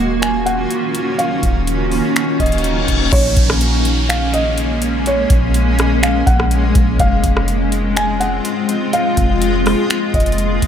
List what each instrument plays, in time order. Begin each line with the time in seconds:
Already playing: 808-style bass D#1, ambient pad D#3 A#3 C#4 F4 F#4
0.22 felt piano G#5, finger snap, closed hi-hat
0.46 felt piano F#5, closed hi-hat
0.71 closed hi-hat
0.95 closed hi-hat
1.18 ambient pad D#4, felt piano F5, closed hi-hat
1.43 808-style bass D#1, kick, closed hi-hat
1.67 closed hi-hat
1.92 open hi-hat
2.16 finger snap, closed hi-hat, reverse cymbal
2.40 808-style bass D#1, felt piano D#5, kick, closed hi-hat
2.46 closed hi-hat
2.52 closed hi-hat
2.58 closed hi-hat
2.64 closed hi-hat
2.88 808-style bass D#1, kick, closed hi-hat
3.12 808-style bass A#1, ambient pad G#3 A#3 C#4, felt piano C#5, kick, closed hi-hat, crash, downlifter
3.37 808-style bass A#1, kick, closed hi-hat
3.50 cross-stick
3.61 closed hi-hat
3.85 closed hi-hat
4.09 felt piano F5, finger snap, closed hi-hat
4.34 felt piano D#5, closed hi-hat
4.58 closed hi-hat
4.82 closed hi-hat
5.06 felt piano C#5, closed hi-hat
5.30 808-style bass A#1, kick, closed hi-hat
5.54 closed hi-hat
5.79 cross-stick, closed hi-hat
6.03 felt piano F5, finger snap, closed hi-hat
6.27 808-style bass A#1, felt piano F#5, kick, closed hi-hat
6.40 cross-stick
6.51 closed hi-hat
6.75 808-style bass A#1, kick, closed hi-hat
7.00 808-style bass F1, ambient pad C4 F4, felt piano F5, kick, closed hi-hat
7.24 808-style bass F1, kick, closed hi-hat
7.37 cross-stick
7.48 closed hi-hat
7.72 closed hi-hat
7.97 felt piano G#5, finger snap, closed hi-hat
8.20 felt piano F#5, closed hi-hat
8.45 closed hi-hat
8.69 closed hi-hat
8.93 ambient pad A#3, felt piano F5, closed hi-hat
9.17 808-style bass F1, kick, closed hi-hat
9.42 closed hi-hat
9.66 cross-stick, open hi-hat
9.90 finger snap, closed hi-hat
10.14 808-style bass F1, felt piano D#5, kick, closed hi-hat
10.20 closed hi-hat
10.26 closed hi-hat
10.32 closed hi-hat
10.38 closed hi-hat
10.62 808-style bass F1, kick, closed hi-hat